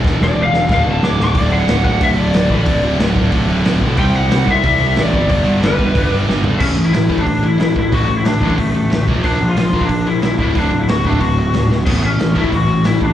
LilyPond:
<<
  \new Staff \with { instrumentName = "Lead electric guitar" } { \time 4/4 \key d \major \tempo 4 = 183 r8 d''8 f''4 f''8 a''8 d'''8 d'''8 | d''8 fis''4 fis''8 e''8 d''4 d''8~ | d''8 r2. r8 | g''8 fis''4 e''8 e''4 d''4 |
d''4 b'4. r4. | cis'8. e'16 e'8. d'8. e'8 e'8 e'8 | fis'8. e'16 d'8 d'8 a4. r8 | d'8. f'16 f'8. d'8. e'8 e'8 e'8 |
d'8. e'16 fis'8 d'8 fis'4. r8 | b8 cis'4 e'8 fis'4 e'8 d'8 | }
  \new Staff \with { instrumentName = "Distorted electric guitar" } { \clef bass \time 4/4 \key d \major <e, b, e>2 <d, a, d>2 | <d, a, d>8 <d, a, d>8 <d, a, d>8 <d, a, d>8 <d, a, d>8 <d, a, d>8 <d, a, d>8 <d, a, d>8 | <d, a, d>8 <d, a, d>8 <d, a, d>8 <d, a, d>8 <d, a, d>8 <d, a, d>8 <d, a, d>8 <d, a, d>8 | <c g c'>8 <c g c'>8 <c g c'>8 <c g c'>8 <c g c'>8 <c g c'>8 <c g c'>8 <g, d g>8 |
<g, d g>8 <g, d g>8 <g, d g>8 <g, d g>8 <g, d g>8 <g, d g>8 <g, d g>8 <g, d g>8 | <a, e a>8 <a, e>8 <a, e>8 <a, e a>8 <a, e>8 <a, e>8 <a, e>8 <a, e>8 | <d, a, d>8 <d, a,>8 <d, a,>8 <d, a, d>8 <d, a,>8 <d, a,>8 <d, a,>8 <bes, f bes>8 | <bes, f bes>8 <bes, f>8 <bes, f>8 <bes, f bes>8 <bes, f>8 <bes, f>8 <bes, f>8 <d, a, d>8 |
<d, a, d>8 <d, a,>8 <d, a,>8 <d, a, d>8 <d, a,>8 <d, a,>8 <d, a,>8 <d, a,>8 | <a, e a>8 <a, e>8 <a, e>8 <a, e a>8 <a, e>8 <a, e>8 <a, e>8 <a, e>8 | }
  \new Staff \with { instrumentName = "Picked electric bass" } { \clef bass \time 4/4 \key d \major e,,8 e,,8 e,,8 e,,8 d,,8 d,,8 d,,8 d,,8 | d,,4 d,,8 d,,8 d,,8 d,,8 d,,8 a,,8 | d,,8 d,,8 d,,8 d,,8 d,,8 d,,8 d,,8 b,,8 | c,4 c,8 c,8 c,8 c,8 a,,8 g,,8 |
g,,8 g,,8 g,,8 g,,8 g,,8 g,,8 g,,8 g,,8 | a,,8 a,,8 a,,8 a,,8 a,,4 a,,4 | a,,8 a,,8 a,,8 a,,8 a,,4 a,,8 bes,,8 | bes,,8 bes,,8 bes,,8 bes,,8 bes,,4 bes,,8 d,,8 |
d,,8 d,,8 d,,8 d,,8 d,,4 d,,4 | a,,8 a,,8 a,,8 a,,8 a,,4 a,,4 | }
  \new DrumStaff \with { instrumentName = "Drums" } \drummode { \time 4/4 <bd sn>8 sn8 r8 sn8 <bd sn>4 sn8 sn8 | <hho bd>4 <hho sn>8 bd8 <hho bd>4 <hho sn>8 bd8 | <hho bd>4 <hho sn>8 bd8 <hho bd>4 <hho sn>8 bd8 | <hho bd>4 <hho sn>8 bd8 <hho bd>4 <hho sn>8 bd8 |
<hho bd>4 <hho sn>8 bd8 <hho bd>4 sn8 tomfh8 | <cymc bd>4 <hho sn>8 bd16 bd16 <hho bd>4 <hho sn>8 bd8 | <hho bd>4 <hho sn>8 bd16 bd16 <hho bd>4 <hho sn>8 bd8 | <hho bd>4 <hho sn>8 bd16 bd16 <hho bd>4 <hho sn>8 bd8 |
<hho bd>4 <hho sn>8 bd16 bd16 <hho bd>4 <hho sn>8 sn8 | <cymc bd>4 <hho sn>8 bd16 bd16 <hho bd>4 <hho sn>8 bd8 | }
>>